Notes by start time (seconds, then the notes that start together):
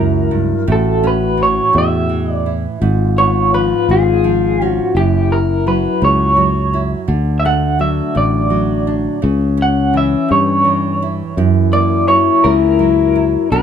Already playing: C#2 F#2 F#3 A#3 E4 A#4
0.31 G2
0.67 A1 A2 F#4
0.72 A4
1.04 C#4 B4
1.37 E3
1.43 C#5
1.73 E2 A2
1.78 E5
2.09 E3
2.32 D5
2.46 E4
2.81 G#1 G#2 F4
3.18 B3 C#5
3.54 F3 B4
3.89 G#1 G#2 G#4
4.24 F3
4.62 C#4
4.66 F#4
4.94 F#1 F#2 E4 G4
5.32 A#4
5.67 F#3 B4
6.02 C#2 C#3 C#5
6.37 F#3
6.73 E4
7.08 D2 D3 D4
7.40 E5
7.45 A3 F#5
7.79 F#3 E5
8.15 A1 A2 D5
8.50 F#3
8.87 D4
9.22 C#2 C#3 C#4
9.57 C#4
9.62 F#5
9.93 E3 E5
10.28 G2 C#5
10.65 E3
11.02 E4
11.37 F#2 E4
11.73 A#3 D5
12.08 F#3 C#5
12.44 C#2 C#3 A#4
12.79 F#3
13.15 E4
13.50 B1 B2 D4 B4